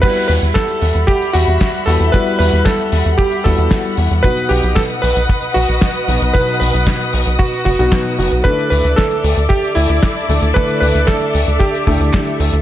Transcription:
<<
  \new Staff \with { instrumentName = "String section" } { \time 4/4 \key e \minor \tempo 4 = 114 << { <g e'' b''>1~ | <g e'' b''>1 | <b' dis'' dis'''>1~ | <b' dis'' dis'''>1 |
<a' d'' d'''>1~ | <a' d'' d'''>1 | } \\ { fis''1~ | fis''1~ | fis''1~ | fis''1 |
e''1~ | e''1 | } >> }
  \new Staff \with { instrumentName = "Electric grand piano" } { \time 4/4 \key e \minor b'8 b'8 a'4 g'8 fis'4 a'8 | b'8 b'8 a'4 g'8 a'4 r8 | b'8 g'8 a'8 b'4 fis'4. | b'8 b'4 r8 fis'8 fis'4. |
b'8 b'8 a'4 g'8 e'4. | b'8 b'8 a'4 g'4. r8 | }
  \new Staff \with { instrumentName = "Grand piano" } { \time 4/4 \key e \minor <g b e' fis'>2.~ <g b e' fis'>8 <g b e' fis'>8 | <g b e' fis'>2~ <g b e' fis'>8 <g b e' fis'>4. | <b, fis b dis' fis'>2.~ <b, fis b dis' fis'>8 <b, fis b dis' fis'>8 | <b, fis b dis' fis'>2~ <b, fis b dis' fis'>8 r16 <b, fis b dis' fis'>8. <fis b dis' fis'>8 |
<d a d' e' a'>2.~ <d a d' e' a'>8 <d a d' e' a'>8 | <d a d' e' a'>2~ <d a d' e' a'>8 <d a d' e' a'>4. | }
  \new Staff \with { instrumentName = "Analog synth bass" } { \clef bass \time 4/4 \key e \minor r8 e,16 e,16 r8 e,16 e,16 r8 e,16 e,16 r8 e,16 e,16 | r8 e,16 e,16 r8 e,16 e,16 r8 e,16 e,16 r8 e,16 e,16 | r8 b,,16 b,,16 r8 b,,16 b,,16 r8 b,,16 b,,16 r8 b,,16 b,,16 | r8 b,,16 b,,16 r8 b,,16 b,,16 r8 fis,,16 b,,16 r8 fis,,16 b,,16 |
r8 d,16 d,16 r8 d,16 d,16 r8 d,16 d,16 r8 d,16 d,16 | r8 d,16 d,16 r8 d,16 d,16 r8 d,16 d,16 r8 d,16 d,16 | }
  \new DrumStaff \with { instrumentName = "Drums" } \drummode { \time 4/4 <cymc hh bd>16 hh16 hho16 hh16 <hc hh bd sn>16 hh16 hho16 hh16 <hh bd>16 hh16 hho16 hh16 <hc hh bd sn>16 hh16 hho16 hh16 | <hh bd>16 hh16 hho16 hh16 <hc hh bd sn>16 hh16 hho16 hh16 <hh bd>16 hh16 <hho bd>16 hh16 <hc hh bd sn>16 hh16 hho16 hh16 | <hh bd>16 hh16 hho16 hh16 <hc hh bd sn>16 hh16 hho16 hh16 <hh bd>16 hh16 hho16 hh16 <hc hh bd sn>16 hh16 hho16 hh16 | <hh bd>16 hh16 hho16 hh16 <hc hh bd sn>16 hh16 hho16 hh16 <hh bd>16 hh16 <hho bd>16 hh16 <hc hh bd sn>16 hh16 hho16 hh16 |
<hh bd>16 hh16 hho16 hh16 <hc hh bd sn>16 hh16 hho16 hh16 <hh bd>16 hh16 hho16 hh16 <hc hh bd sn>16 hh16 hho16 hh16 | <hh bd>16 hh16 hho16 hh16 <hc hh bd sn>16 hh16 hho16 hh16 <hh bd>16 hh16 <hho bd>16 hh16 <hc hh bd sn>16 hh16 hho16 hh16 | }
>>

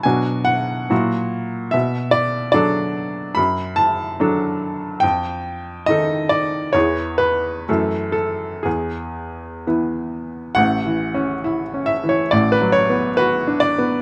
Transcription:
<<
  \new Staff \with { instrumentName = "Upright piano" } { \time 2/4 \key b \dorian \tempo 4 = 69 gis''8 fis''4. | e''8 d''8 d''4 | \key a \major b''8 a''4. | g''4 ees''8 d''8 |
cis''8 b'4 a'8 | gis'4 r4 | fis''4. e''16 cis''16 | d''16 b'16 cis''8 b'8 d''8 | }
  \new Staff \with { instrumentName = "Upright piano" } { \clef bass \time 2/4 \key b \dorian <b, fis d' fis'>4 <ais, fis e' fis'>4 | b,4 <fis d' a'>4 | \key a \major fis,4 <fis d' a'>4 | f,4 <ees ees' a'>4 |
<e, e b gis'>4 <fis, e a a'>4 | e,4 <e b e'>4 | \tuplet 3/2 { <a,, a,>8 e8 cis'8 e'8 cis'8 e8 } | \tuplet 3/2 { <a,, a,>8 fis8 b8 fis'8 d'8 b8 } | }
>>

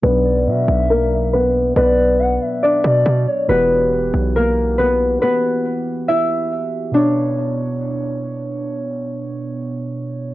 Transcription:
<<
  \new Staff \with { instrumentName = "Soft synth lead" } { \time 4/4 \key b \minor \tempo 4 = 139 r8 d''8 e''2 r4 | d''4 fis''8 e''4 d''4 cis''8 | r1 | r1 |
r1 | r1 | }
  \new Staff \with { instrumentName = "Harp" } { \time 4/4 \key b \minor <b b'>2 <ais ais'>4 <b b'>4 | <b b'>2 <d' d''>2 | <b b'>2 <ais ais'>4 <b b'>4 | <b b'>2 <e' e''>2 |
d'2. r4 | r1 | }
  \new Staff \with { instrumentName = "Synth keys" } { \time 4/4 \key b \minor <b, fis d' d''>1~ | <b, fis d' d''>1 | <e e' fis' g'>1~ | <e e' fis' g'>1 |
<b, b d' cis''>1~ | <b, b d' cis''>1 | }
  \new Staff \with { instrumentName = "808-style bass" } { \clef bass \time 4/4 \key b \minor b,,4 b,8 b,,2~ b,,8 | b,,4. r4 b,8 b,8 r8 | e,,4. b,,2~ b,,8 | r1 |
r1 | r1 | }
>>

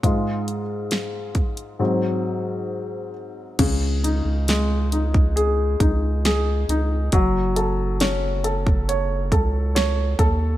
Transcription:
<<
  \new Staff \with { instrumentName = "Upright piano" } { \time 4/4 \key ges \lydian \tempo 4 = 68 <aes, aes f'>8 r4. <aes, ges c'>4. r8 | des8 ees'8 aes8 ees'8 aes'8 ees'8 aes'8 ees'8 | ges8 a'8 des'8 a'8 des''8 a'8 des''8 a'8 | }
  \new Staff \with { instrumentName = "Analog synth bass" } { \clef bass \time 4/4 \key ges \lydian r1 | des,8. des,4.~ des,16 des,4 des,8 | ges,,2~ ges,,8 des,4 ees,8 | }
  \new DrumStaff \with { instrumentName = "Drums" } \drummode { \time 4/4 <hh bd>8 hh8 <hh sn>8 <hh bd>16 hh16 r4 r4 | <cymc hh bd>8 hh8 <hh sn>8 hh16 bd16 hh8 <hh bd>8 <hh sn>8 hh8 | <hh bd>8 hh8 <hh sn>8 hh16 bd16 hh8 <hh bd>8 <hh sn>8 <hh bd>8 | }
>>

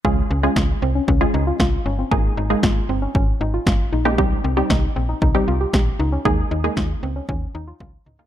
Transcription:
<<
  \new Staff \with { instrumentName = "Synth arpeggio sound" } { \time 4/4 \key des \lydian \tempo 4 = 116 aes'8 des'16 des'16 f'8 c'16 des'16 des'8 ees'16 f'16 f'8 des'16 c'16 | aes'8 ees'16 ees'16 f'8 c'16 des'16 des'8 ees'16 f'16 f'8 ees'16 des'16 | g'8 c'16 c'16 ees'8 c'16 ees'16 ees'8 f'16 g'16 g'8 ees'16 des'16 | aes'8 ees'16 ees'16 f'8 c'16 des'16 des'8 ees'16 f'16 f'8 ees'16 des'16 | }
  \new Staff \with { instrumentName = "Synth pluck" } { \time 4/4 \key des \lydian <aes des' f' aes'>8 r16 <aes des' f' aes'>8. r8. <aes des' f' aes'>4 r8. | <aes bes ees' aes'>8 r16 <aes bes ees' aes'>4 r2 <aes bes ees' g'>16 | <g c' ees' g'>8 r16 <g c' ees' g'>8. r8. <g c' ees' g'>4 r8. | <aes bes ees' aes'>8 r16 <aes bes ees' aes'>4 r2 <aes bes ees' f'>16 | }
  \new Staff \with { instrumentName = "FM bass" } { \clef bass \time 4/4 \key des \lydian des,8 des,8 des,8 c,8 des,8 des,8 c,8 g,,8 | aes,,8 aes,,8 aes,,8 g,,8 aes,,8 aes,,8 g,,8 bes,,8 | c,8 c,8 c,8 bes,,8 c,8 c,8 bes,,8 des,8 | ees,8 ees,8 ees,8 des,8 ees,8 ees,8 des,8 des,8 | }
  \new DrumStaff \with { instrumentName = "Drums" } \drummode { \time 4/4 bd4 <bd sn>4 bd4 <bd sn>4 | bd4 <bd sn>4 bd4 <bd sn>4 | bd4 <bd sn>4 bd4 <bd sn>4 | bd4 <bd sn>4 bd4 <bd tommh>8 toml16 tomfh16 | }
>>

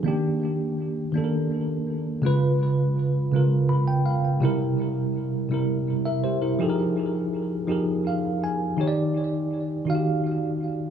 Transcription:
\new Staff \with { instrumentName = "Tine electric piano" } { \time 6/8 \key ees \major \tempo 4. = 55 << { r2. | r2 ces'''16 g''16 f''8 | r2 r16 <bes' e''>16 <g' c''>16 <e' bes'>16~ | <e' bes'>16 r4. r16 f''8 aes''8 |
r2. | } \\ { <ees bes d' g'>4. <ees bes d' a' bes'>4. | <des aes f' ces''>4. <des aes f' bes'>4. | <c g e' bes'>4. <c g e' bes'>4. | <f ees' g' aes' a' bes'>4. <f ees' g' aes' bes'>4. |
<ees ees' g' des'' d''>4. <ees ees' ges' g' f''>4. | } >> }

